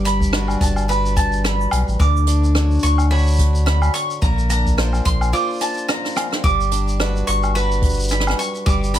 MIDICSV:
0, 0, Header, 1, 5, 480
1, 0, Start_track
1, 0, Tempo, 555556
1, 1725, Time_signature, 4, 2, 24, 8
1, 7767, End_track
2, 0, Start_track
2, 0, Title_t, "Mandolin"
2, 0, Program_c, 0, 25
2, 46, Note_on_c, 0, 83, 100
2, 523, Note_off_c, 0, 83, 0
2, 527, Note_on_c, 0, 81, 89
2, 766, Note_off_c, 0, 81, 0
2, 769, Note_on_c, 0, 83, 96
2, 1004, Note_off_c, 0, 83, 0
2, 1008, Note_on_c, 0, 81, 96
2, 1230, Note_off_c, 0, 81, 0
2, 1249, Note_on_c, 0, 83, 87
2, 1694, Note_off_c, 0, 83, 0
2, 1726, Note_on_c, 0, 86, 101
2, 2443, Note_off_c, 0, 86, 0
2, 2446, Note_on_c, 0, 85, 97
2, 2681, Note_off_c, 0, 85, 0
2, 2685, Note_on_c, 0, 83, 98
2, 3153, Note_off_c, 0, 83, 0
2, 3163, Note_on_c, 0, 83, 90
2, 3399, Note_off_c, 0, 83, 0
2, 3403, Note_on_c, 0, 85, 97
2, 3643, Note_off_c, 0, 85, 0
2, 3647, Note_on_c, 0, 82, 88
2, 3878, Note_off_c, 0, 82, 0
2, 3889, Note_on_c, 0, 82, 90
2, 4363, Note_off_c, 0, 82, 0
2, 4366, Note_on_c, 0, 84, 98
2, 4603, Note_off_c, 0, 84, 0
2, 4607, Note_on_c, 0, 86, 100
2, 4829, Note_off_c, 0, 86, 0
2, 4849, Note_on_c, 0, 81, 86
2, 5081, Note_off_c, 0, 81, 0
2, 5085, Note_on_c, 0, 82, 84
2, 5531, Note_off_c, 0, 82, 0
2, 5563, Note_on_c, 0, 86, 100
2, 6280, Note_off_c, 0, 86, 0
2, 6283, Note_on_c, 0, 85, 100
2, 6507, Note_off_c, 0, 85, 0
2, 6525, Note_on_c, 0, 83, 95
2, 6998, Note_off_c, 0, 83, 0
2, 7008, Note_on_c, 0, 83, 92
2, 7245, Note_off_c, 0, 83, 0
2, 7248, Note_on_c, 0, 85, 95
2, 7480, Note_off_c, 0, 85, 0
2, 7483, Note_on_c, 0, 86, 103
2, 7722, Note_off_c, 0, 86, 0
2, 7726, Note_on_c, 0, 83, 92
2, 7767, Note_off_c, 0, 83, 0
2, 7767, End_track
3, 0, Start_track
3, 0, Title_t, "Steel-string acoustic guitar"
3, 0, Program_c, 1, 25
3, 0, Note_on_c, 1, 55, 83
3, 0, Note_on_c, 1, 66, 66
3, 0, Note_on_c, 1, 71, 77
3, 40, Note_on_c, 1, 62, 61
3, 277, Note_off_c, 1, 62, 0
3, 280, Note_on_c, 1, 62, 58
3, 282, Note_off_c, 1, 71, 0
3, 284, Note_off_c, 1, 66, 0
3, 287, Note_on_c, 1, 66, 58
3, 292, Note_on_c, 1, 71, 63
3, 759, Note_off_c, 1, 62, 0
3, 762, Note_on_c, 1, 62, 70
3, 763, Note_off_c, 1, 71, 0
3, 765, Note_off_c, 1, 66, 0
3, 768, Note_on_c, 1, 66, 72
3, 774, Note_on_c, 1, 71, 75
3, 1723, Note_off_c, 1, 55, 0
3, 1723, Note_on_c, 1, 50, 84
3, 1783, Note_off_c, 1, 71, 0
3, 1961, Note_off_c, 1, 62, 0
3, 1964, Note_on_c, 1, 62, 63
3, 2201, Note_off_c, 1, 62, 0
3, 2205, Note_on_c, 1, 62, 60
3, 2206, Note_off_c, 1, 66, 0
3, 2209, Note_on_c, 1, 66, 62
3, 2215, Note_on_c, 1, 73, 60
3, 2681, Note_off_c, 1, 66, 0
3, 2682, Note_off_c, 1, 62, 0
3, 2685, Note_off_c, 1, 73, 0
3, 2686, Note_on_c, 1, 62, 69
3, 2692, Note_on_c, 1, 66, 68
3, 2696, Note_on_c, 1, 73, 76
3, 3642, Note_on_c, 1, 58, 79
3, 3702, Note_off_c, 1, 66, 0
3, 3704, Note_off_c, 1, 73, 0
3, 3882, Note_off_c, 1, 62, 0
3, 3885, Note_on_c, 1, 62, 60
3, 4122, Note_off_c, 1, 62, 0
3, 4125, Note_on_c, 1, 62, 57
3, 4130, Note_on_c, 1, 65, 57
3, 4136, Note_on_c, 1, 72, 60
3, 4162, Note_off_c, 1, 50, 0
3, 4596, Note_off_c, 1, 65, 0
3, 4598, Note_off_c, 1, 62, 0
3, 4601, Note_on_c, 1, 62, 72
3, 4603, Note_off_c, 1, 72, 0
3, 4607, Note_on_c, 1, 65, 65
3, 4613, Note_on_c, 1, 72, 75
3, 5559, Note_off_c, 1, 58, 0
3, 5563, Note_on_c, 1, 55, 75
3, 5620, Note_off_c, 1, 65, 0
3, 5623, Note_off_c, 1, 72, 0
3, 5800, Note_off_c, 1, 62, 0
3, 5804, Note_on_c, 1, 62, 64
3, 6040, Note_off_c, 1, 62, 0
3, 6043, Note_on_c, 1, 62, 63
3, 6049, Note_on_c, 1, 66, 55
3, 6054, Note_on_c, 1, 71, 64
3, 6520, Note_off_c, 1, 62, 0
3, 6524, Note_off_c, 1, 71, 0
3, 6524, Note_on_c, 1, 62, 66
3, 6526, Note_off_c, 1, 66, 0
3, 6529, Note_on_c, 1, 66, 66
3, 6534, Note_on_c, 1, 71, 75
3, 7472, Note_off_c, 1, 55, 0
3, 7482, Note_on_c, 1, 55, 83
3, 7720, Note_off_c, 1, 62, 0
3, 7724, Note_on_c, 1, 62, 67
3, 7767, Note_off_c, 1, 55, 0
3, 7767, Note_off_c, 1, 62, 0
3, 7767, Note_off_c, 1, 66, 0
3, 7767, Note_off_c, 1, 71, 0
3, 7767, End_track
4, 0, Start_track
4, 0, Title_t, "Sub bass"
4, 0, Program_c, 2, 38
4, 0, Note_on_c, 2, 31, 98
4, 481, Note_off_c, 2, 31, 0
4, 524, Note_on_c, 2, 31, 112
4, 1443, Note_off_c, 2, 31, 0
4, 1485, Note_on_c, 2, 35, 101
4, 1587, Note_off_c, 2, 35, 0
4, 1619, Note_on_c, 2, 33, 87
4, 1699, Note_off_c, 2, 33, 0
4, 1725, Note_on_c, 2, 38, 106
4, 2404, Note_off_c, 2, 38, 0
4, 2445, Note_on_c, 2, 38, 106
4, 3364, Note_off_c, 2, 38, 0
4, 3645, Note_on_c, 2, 34, 104
4, 4324, Note_off_c, 2, 34, 0
4, 4367, Note_on_c, 2, 34, 104
4, 4606, Note_off_c, 2, 34, 0
4, 5562, Note_on_c, 2, 31, 104
4, 6242, Note_off_c, 2, 31, 0
4, 6287, Note_on_c, 2, 31, 114
4, 7205, Note_off_c, 2, 31, 0
4, 7487, Note_on_c, 2, 31, 102
4, 7767, Note_off_c, 2, 31, 0
4, 7767, End_track
5, 0, Start_track
5, 0, Title_t, "Drums"
5, 50, Note_on_c, 9, 42, 86
5, 60, Note_on_c, 9, 82, 82
5, 136, Note_off_c, 9, 42, 0
5, 147, Note_off_c, 9, 82, 0
5, 177, Note_on_c, 9, 36, 61
5, 191, Note_on_c, 9, 82, 54
5, 263, Note_off_c, 9, 36, 0
5, 278, Note_off_c, 9, 82, 0
5, 284, Note_on_c, 9, 37, 103
5, 300, Note_on_c, 9, 82, 56
5, 370, Note_off_c, 9, 37, 0
5, 387, Note_off_c, 9, 82, 0
5, 416, Note_on_c, 9, 77, 64
5, 435, Note_on_c, 9, 82, 41
5, 503, Note_off_c, 9, 77, 0
5, 522, Note_off_c, 9, 82, 0
5, 523, Note_on_c, 9, 36, 104
5, 534, Note_on_c, 9, 42, 91
5, 544, Note_on_c, 9, 82, 88
5, 609, Note_off_c, 9, 36, 0
5, 620, Note_off_c, 9, 42, 0
5, 630, Note_off_c, 9, 82, 0
5, 659, Note_on_c, 9, 77, 58
5, 666, Note_on_c, 9, 82, 52
5, 745, Note_off_c, 9, 77, 0
5, 753, Note_off_c, 9, 82, 0
5, 783, Note_on_c, 9, 82, 66
5, 869, Note_off_c, 9, 82, 0
5, 912, Note_on_c, 9, 82, 45
5, 999, Note_off_c, 9, 82, 0
5, 1007, Note_on_c, 9, 36, 98
5, 1009, Note_on_c, 9, 42, 99
5, 1010, Note_on_c, 9, 82, 83
5, 1093, Note_off_c, 9, 36, 0
5, 1095, Note_off_c, 9, 42, 0
5, 1096, Note_off_c, 9, 82, 0
5, 1145, Note_on_c, 9, 82, 43
5, 1231, Note_off_c, 9, 82, 0
5, 1249, Note_on_c, 9, 37, 100
5, 1254, Note_on_c, 9, 82, 62
5, 1335, Note_off_c, 9, 37, 0
5, 1340, Note_off_c, 9, 82, 0
5, 1390, Note_on_c, 9, 82, 42
5, 1476, Note_off_c, 9, 82, 0
5, 1480, Note_on_c, 9, 77, 97
5, 1490, Note_on_c, 9, 42, 105
5, 1490, Note_on_c, 9, 82, 85
5, 1567, Note_off_c, 9, 77, 0
5, 1576, Note_off_c, 9, 42, 0
5, 1576, Note_off_c, 9, 82, 0
5, 1628, Note_on_c, 9, 82, 44
5, 1714, Note_off_c, 9, 82, 0
5, 1723, Note_on_c, 9, 36, 114
5, 1732, Note_on_c, 9, 82, 55
5, 1810, Note_off_c, 9, 36, 0
5, 1818, Note_off_c, 9, 82, 0
5, 1870, Note_on_c, 9, 82, 45
5, 1956, Note_off_c, 9, 82, 0
5, 1959, Note_on_c, 9, 42, 100
5, 1974, Note_on_c, 9, 82, 85
5, 2046, Note_off_c, 9, 42, 0
5, 2061, Note_off_c, 9, 82, 0
5, 2107, Note_on_c, 9, 82, 47
5, 2194, Note_off_c, 9, 82, 0
5, 2202, Note_on_c, 9, 37, 95
5, 2212, Note_on_c, 9, 82, 65
5, 2288, Note_off_c, 9, 37, 0
5, 2299, Note_off_c, 9, 82, 0
5, 2342, Note_on_c, 9, 82, 19
5, 2369, Note_off_c, 9, 82, 0
5, 2369, Note_on_c, 9, 82, 26
5, 2413, Note_off_c, 9, 82, 0
5, 2413, Note_on_c, 9, 82, 33
5, 2441, Note_on_c, 9, 42, 98
5, 2459, Note_off_c, 9, 82, 0
5, 2459, Note_on_c, 9, 82, 86
5, 2528, Note_off_c, 9, 42, 0
5, 2545, Note_off_c, 9, 82, 0
5, 2575, Note_on_c, 9, 77, 65
5, 2583, Note_on_c, 9, 82, 53
5, 2662, Note_off_c, 9, 77, 0
5, 2670, Note_off_c, 9, 82, 0
5, 2689, Note_on_c, 9, 82, 26
5, 2723, Note_off_c, 9, 82, 0
5, 2723, Note_on_c, 9, 82, 29
5, 2756, Note_off_c, 9, 82, 0
5, 2756, Note_on_c, 9, 82, 31
5, 2789, Note_off_c, 9, 82, 0
5, 2789, Note_on_c, 9, 82, 33
5, 2824, Note_off_c, 9, 82, 0
5, 2824, Note_on_c, 9, 82, 37
5, 2828, Note_off_c, 9, 82, 0
5, 2828, Note_on_c, 9, 82, 41
5, 2849, Note_off_c, 9, 82, 0
5, 2849, Note_on_c, 9, 82, 43
5, 2877, Note_off_c, 9, 82, 0
5, 2877, Note_on_c, 9, 82, 45
5, 2902, Note_off_c, 9, 82, 0
5, 2902, Note_on_c, 9, 82, 49
5, 2925, Note_on_c, 9, 36, 93
5, 2928, Note_on_c, 9, 42, 89
5, 2932, Note_off_c, 9, 82, 0
5, 2932, Note_on_c, 9, 82, 78
5, 3012, Note_off_c, 9, 36, 0
5, 3014, Note_off_c, 9, 42, 0
5, 3019, Note_off_c, 9, 82, 0
5, 3068, Note_on_c, 9, 82, 47
5, 3155, Note_off_c, 9, 82, 0
5, 3168, Note_on_c, 9, 37, 87
5, 3175, Note_on_c, 9, 82, 59
5, 3255, Note_off_c, 9, 37, 0
5, 3261, Note_off_c, 9, 82, 0
5, 3299, Note_on_c, 9, 77, 83
5, 3304, Note_on_c, 9, 82, 43
5, 3385, Note_off_c, 9, 77, 0
5, 3390, Note_off_c, 9, 82, 0
5, 3407, Note_on_c, 9, 82, 75
5, 3410, Note_on_c, 9, 42, 99
5, 3494, Note_off_c, 9, 82, 0
5, 3496, Note_off_c, 9, 42, 0
5, 3545, Note_on_c, 9, 82, 46
5, 3631, Note_off_c, 9, 82, 0
5, 3646, Note_on_c, 9, 36, 116
5, 3648, Note_on_c, 9, 82, 58
5, 3732, Note_off_c, 9, 36, 0
5, 3734, Note_off_c, 9, 82, 0
5, 3789, Note_on_c, 9, 82, 44
5, 3875, Note_off_c, 9, 82, 0
5, 3885, Note_on_c, 9, 42, 103
5, 3891, Note_on_c, 9, 82, 82
5, 3972, Note_off_c, 9, 42, 0
5, 3977, Note_off_c, 9, 82, 0
5, 4025, Note_on_c, 9, 36, 59
5, 4033, Note_on_c, 9, 82, 45
5, 4112, Note_off_c, 9, 36, 0
5, 4119, Note_off_c, 9, 82, 0
5, 4130, Note_on_c, 9, 37, 109
5, 4138, Note_on_c, 9, 82, 57
5, 4217, Note_off_c, 9, 37, 0
5, 4224, Note_off_c, 9, 82, 0
5, 4259, Note_on_c, 9, 77, 60
5, 4268, Note_on_c, 9, 82, 39
5, 4345, Note_off_c, 9, 77, 0
5, 4355, Note_off_c, 9, 82, 0
5, 4366, Note_on_c, 9, 42, 101
5, 4367, Note_on_c, 9, 36, 101
5, 4370, Note_on_c, 9, 82, 73
5, 4452, Note_off_c, 9, 42, 0
5, 4454, Note_off_c, 9, 36, 0
5, 4456, Note_off_c, 9, 82, 0
5, 4503, Note_on_c, 9, 77, 72
5, 4510, Note_on_c, 9, 82, 50
5, 4589, Note_off_c, 9, 77, 0
5, 4596, Note_off_c, 9, 82, 0
5, 4614, Note_on_c, 9, 82, 55
5, 4701, Note_off_c, 9, 82, 0
5, 4750, Note_on_c, 9, 82, 18
5, 4776, Note_off_c, 9, 82, 0
5, 4776, Note_on_c, 9, 82, 19
5, 4801, Note_off_c, 9, 82, 0
5, 4801, Note_on_c, 9, 82, 23
5, 4827, Note_off_c, 9, 82, 0
5, 4827, Note_on_c, 9, 82, 26
5, 4844, Note_on_c, 9, 37, 31
5, 4844, Note_on_c, 9, 42, 98
5, 4852, Note_off_c, 9, 82, 0
5, 4852, Note_on_c, 9, 82, 27
5, 4855, Note_off_c, 9, 82, 0
5, 4855, Note_on_c, 9, 82, 81
5, 4887, Note_off_c, 9, 82, 0
5, 4887, Note_on_c, 9, 82, 30
5, 4919, Note_off_c, 9, 82, 0
5, 4919, Note_on_c, 9, 82, 30
5, 4930, Note_off_c, 9, 42, 0
5, 4931, Note_off_c, 9, 37, 0
5, 4954, Note_off_c, 9, 82, 0
5, 4954, Note_on_c, 9, 82, 32
5, 4988, Note_off_c, 9, 82, 0
5, 4988, Note_on_c, 9, 82, 43
5, 5074, Note_off_c, 9, 82, 0
5, 5087, Note_on_c, 9, 37, 102
5, 5090, Note_on_c, 9, 82, 55
5, 5173, Note_off_c, 9, 37, 0
5, 5177, Note_off_c, 9, 82, 0
5, 5225, Note_on_c, 9, 37, 45
5, 5234, Note_on_c, 9, 82, 34
5, 5260, Note_off_c, 9, 82, 0
5, 5260, Note_on_c, 9, 82, 29
5, 5286, Note_off_c, 9, 82, 0
5, 5286, Note_on_c, 9, 82, 24
5, 5312, Note_off_c, 9, 37, 0
5, 5315, Note_off_c, 9, 82, 0
5, 5315, Note_on_c, 9, 82, 19
5, 5325, Note_on_c, 9, 37, 73
5, 5329, Note_on_c, 9, 77, 85
5, 5330, Note_off_c, 9, 82, 0
5, 5330, Note_on_c, 9, 42, 99
5, 5330, Note_on_c, 9, 82, 79
5, 5340, Note_off_c, 9, 82, 0
5, 5340, Note_on_c, 9, 82, 17
5, 5374, Note_off_c, 9, 82, 0
5, 5374, Note_on_c, 9, 82, 14
5, 5408, Note_off_c, 9, 82, 0
5, 5408, Note_on_c, 9, 82, 12
5, 5411, Note_off_c, 9, 37, 0
5, 5416, Note_off_c, 9, 77, 0
5, 5417, Note_off_c, 9, 42, 0
5, 5440, Note_off_c, 9, 82, 0
5, 5440, Note_on_c, 9, 82, 9
5, 5463, Note_on_c, 9, 37, 75
5, 5468, Note_off_c, 9, 82, 0
5, 5468, Note_on_c, 9, 82, 43
5, 5549, Note_off_c, 9, 37, 0
5, 5554, Note_off_c, 9, 82, 0
5, 5561, Note_on_c, 9, 36, 127
5, 5571, Note_on_c, 9, 82, 53
5, 5647, Note_off_c, 9, 36, 0
5, 5657, Note_off_c, 9, 82, 0
5, 5708, Note_on_c, 9, 82, 42
5, 5794, Note_off_c, 9, 82, 0
5, 5800, Note_on_c, 9, 42, 90
5, 5810, Note_on_c, 9, 82, 79
5, 5887, Note_off_c, 9, 42, 0
5, 5896, Note_off_c, 9, 82, 0
5, 5946, Note_on_c, 9, 82, 48
5, 6032, Note_off_c, 9, 82, 0
5, 6047, Note_on_c, 9, 37, 109
5, 6057, Note_on_c, 9, 82, 56
5, 6133, Note_off_c, 9, 37, 0
5, 6144, Note_off_c, 9, 82, 0
5, 6189, Note_on_c, 9, 82, 40
5, 6275, Note_off_c, 9, 82, 0
5, 6284, Note_on_c, 9, 42, 111
5, 6291, Note_on_c, 9, 82, 85
5, 6371, Note_off_c, 9, 42, 0
5, 6377, Note_off_c, 9, 82, 0
5, 6419, Note_on_c, 9, 82, 51
5, 6424, Note_on_c, 9, 77, 70
5, 6506, Note_off_c, 9, 82, 0
5, 6510, Note_off_c, 9, 77, 0
5, 6534, Note_on_c, 9, 82, 62
5, 6621, Note_off_c, 9, 82, 0
5, 6667, Note_on_c, 9, 82, 41
5, 6754, Note_off_c, 9, 82, 0
5, 6756, Note_on_c, 9, 36, 114
5, 6759, Note_on_c, 9, 42, 86
5, 6773, Note_on_c, 9, 82, 39
5, 6819, Note_off_c, 9, 82, 0
5, 6819, Note_on_c, 9, 82, 48
5, 6843, Note_off_c, 9, 36, 0
5, 6845, Note_off_c, 9, 42, 0
5, 6856, Note_off_c, 9, 82, 0
5, 6856, Note_on_c, 9, 82, 56
5, 6911, Note_off_c, 9, 82, 0
5, 6911, Note_on_c, 9, 82, 61
5, 6938, Note_off_c, 9, 82, 0
5, 6938, Note_on_c, 9, 82, 72
5, 6983, Note_off_c, 9, 82, 0
5, 6983, Note_on_c, 9, 82, 77
5, 7006, Note_on_c, 9, 37, 43
5, 7011, Note_off_c, 9, 82, 0
5, 7011, Note_on_c, 9, 82, 61
5, 7086, Note_off_c, 9, 37, 0
5, 7086, Note_on_c, 9, 37, 60
5, 7097, Note_off_c, 9, 82, 0
5, 7145, Note_on_c, 9, 82, 39
5, 7147, Note_on_c, 9, 77, 80
5, 7168, Note_off_c, 9, 37, 0
5, 7168, Note_on_c, 9, 37, 75
5, 7231, Note_off_c, 9, 82, 0
5, 7233, Note_off_c, 9, 77, 0
5, 7254, Note_off_c, 9, 37, 0
5, 7255, Note_on_c, 9, 82, 92
5, 7341, Note_off_c, 9, 82, 0
5, 7386, Note_on_c, 9, 82, 48
5, 7473, Note_off_c, 9, 82, 0
5, 7486, Note_on_c, 9, 36, 124
5, 7502, Note_on_c, 9, 82, 63
5, 7573, Note_off_c, 9, 36, 0
5, 7588, Note_off_c, 9, 82, 0
5, 7634, Note_on_c, 9, 82, 45
5, 7721, Note_off_c, 9, 82, 0
5, 7729, Note_on_c, 9, 42, 101
5, 7732, Note_on_c, 9, 82, 88
5, 7767, Note_off_c, 9, 42, 0
5, 7767, Note_off_c, 9, 82, 0
5, 7767, End_track
0, 0, End_of_file